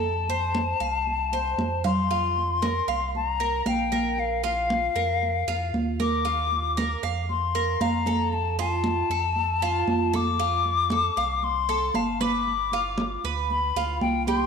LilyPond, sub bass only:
\new Staff \with { instrumentName = "Sub bass" } { \clef bass \time 4/4 \key f \mixolydian \tempo 4 = 116 f,4. c,4. f,4~ | f,4. c,4. bes,,4~ | bes,,4. f,4 f,8 ees,4~ | ees,4. f,4. f,4~ |
f,4. f,4. f,4~ | f,4. c,4. g,,4~ | g,,4. d,4 d,8 c,4 | }